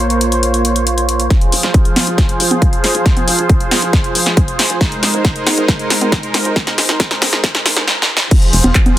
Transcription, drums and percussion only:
0.10 closed hi-hat
0.21 closed hi-hat
0.32 closed hi-hat
0.43 closed hi-hat
0.54 closed hi-hat
0.65 closed hi-hat
0.76 closed hi-hat
0.87 closed hi-hat
0.98 closed hi-hat
1.09 closed hi-hat
1.20 closed hi-hat
1.30 kick, snare, closed hi-hat
1.41 closed hi-hat
1.52 open hi-hat
1.63 snare, closed hi-hat
1.74 kick, closed hi-hat
1.85 closed hi-hat
1.96 snare, open hi-hat, high conga
2.07 closed hi-hat
2.18 kick, snare, closed hi-hat
2.29 closed hi-hat
2.40 open hi-hat
2.51 closed hi-hat, high conga
2.62 kick, closed hi-hat
2.73 closed hi-hat
2.84 snare, open hi-hat
2.95 closed hi-hat
3.06 kick, snare, closed hi-hat
3.17 closed hi-hat, high conga
3.28 open hi-hat
3.39 closed hi-hat
3.49 kick, closed hi-hat
3.60 closed hi-hat
3.71 snare, open hi-hat, high conga
3.82 closed hi-hat
3.93 kick, snare, closed hi-hat
4.04 closed hi-hat
4.15 open hi-hat
4.26 snare, closed hi-hat
4.37 kick, closed hi-hat
4.48 closed hi-hat
4.59 snare, open hi-hat
4.70 closed hi-hat
4.81 kick, snare, closed hi-hat
4.92 closed hi-hat
5.03 snare, open hi-hat
5.14 closed hi-hat
5.25 kick, snare, closed hi-hat
5.36 closed hi-hat
5.47 snare, open hi-hat, high conga
5.58 closed hi-hat
5.68 kick, snare, closed hi-hat
5.79 closed hi-hat
5.90 snare, open hi-hat
6.01 closed hi-hat, high conga
6.12 kick, snare, closed hi-hat
6.23 closed hi-hat
6.34 snare, open hi-hat
6.45 closed hi-hat
6.56 kick, snare, closed hi-hat
6.67 snare, closed hi-hat, high conga
6.78 snare, open hi-hat
6.89 snare, closed hi-hat
7.00 kick, snare, closed hi-hat
7.11 snare, closed hi-hat
7.22 snare, open hi-hat, high conga
7.33 snare, closed hi-hat
7.44 kick, snare, closed hi-hat
7.55 snare, closed hi-hat
7.66 snare, open hi-hat
7.77 snare, closed hi-hat
7.87 snare
8.02 snare
8.17 snare
8.31 kick, closed hi-hat, crash
8.42 closed hi-hat
8.53 open hi-hat
8.64 closed hi-hat, high conga
8.75 kick, clap, closed hi-hat
8.86 closed hi-hat, high conga

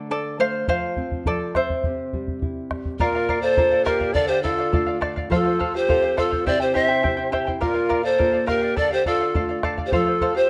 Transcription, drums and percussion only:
0.68 bombo low
0.97 bombo low
1.12 bombo low
1.26 bombo low
1.55 bombo rim, bombo low
1.70 bombo low
1.84 bombo low
2.13 bombo low
2.28 bombo low
2.42 bombo low
2.71 bombo rim, bombo low
2.85 bombo low
3.00 bombo low
3.29 bombo low
3.57 bombo low
3.86 bombo rim, bombo low
4.01 bombo low
4.15 bombo low
4.45 bombo low
4.73 bombo low
5.02 bombo rim, bombo low
5.17 bombo low
5.31 bombo low
5.61 bombo low
5.89 bombo low
6.18 bombo rim, bombo low
6.32 bombo low
6.47 bombo low
6.76 bombo low
7.05 bombo low
7.33 bombo rim, bombo low
7.48 bombo low
7.62 bombo low
7.91 bombo low
8.20 bombo low
8.48 bombo rim, bombo low
8.77 bombo low
9.06 bombo low
9.35 bombo low
9.63 bombo rim, bombo low
9.78 bombo low
9.92 bombo low
10.21 bombo low

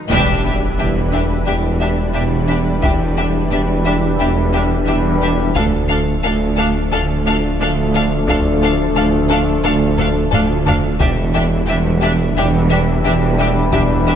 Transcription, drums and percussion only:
0.10 taiko
2.83 taiko
5.56 taiko
8.28 taiko
9.98 taiko low-mid
10.32 taiko low-mid
10.66 taiko low
11.00 taiko
13.73 taiko

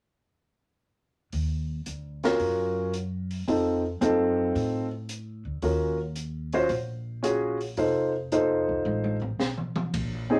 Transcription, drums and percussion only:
1.32 kick, open hi-hat
1.86 closed hi-hat
2.23 snare, open hi-hat
2.40 kick, open hi-hat
2.94 closed hi-hat
3.31 open hi-hat
3.48 kick, open hi-hat
4.02 closed hi-hat
4.55 kick, open hi-hat
5.09 closed hi-hat
5.62 kick, open hi-hat
6.16 closed hi-hat
6.53 open hi-hat
6.69 kick, open hi-hat
7.24 closed hi-hat
7.61 open hi-hat
7.77 kick, open hi-hat
8.32 closed hi-hat
8.69 kick
8.86 high tom
9.04 high tom
9.22 floor tom
9.40 snare
9.58 mid tom
9.76 mid tom
9.94 kick, ride

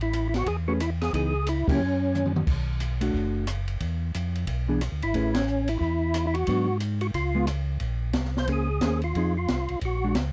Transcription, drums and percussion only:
0.01 ride
0.13 hi-hat pedal, ride
0.34 snare, ride
0.46 kick, ride
0.80 cross-stick, hi-hat pedal, ride
1.01 snare, ride
1.13 kick, ride
1.47 hi-hat pedal, ride
1.68 kick, crash
2.15 hi-hat pedal, mid tom
2.25 mid tom
2.36 mid tom
2.47 kick, crash
2.80 hi-hat pedal, ride
3.01 ride
3.14 kick
3.47 cross-stick, hi-hat pedal, ride
3.68 ride
3.80 kick, ride
4.14 hi-hat pedal, ride
4.35 ride
4.47 kick, ride
4.81 cross-stick, hi-hat pedal, ride
5.02 ride
5.14 kick, ride
5.34 snare, ride
5.47 hi-hat pedal
5.68 ride
5.81 kick
6.14 cross-stick, hi-hat pedal, ride
6.35 ride
6.47 kick, ride
6.80 hi-hat pedal, ride
7.01 ride
7.14 kick, ride
7.47 cross-stick, hi-hat pedal, ride
7.80 kick, ride
8.13 kick, snare, hi-hat pedal, ride
8.25 snare
8.37 snare
8.47 kick, ride
8.81 kick, snare, hi-hat pedal, ride
9.02 ride
9.15 kick, ride
9.48 kick, snare, hi-hat pedal, ride
9.69 ride
9.81 kick, ride
10.15 kick, snare, hi-hat pedal, ride

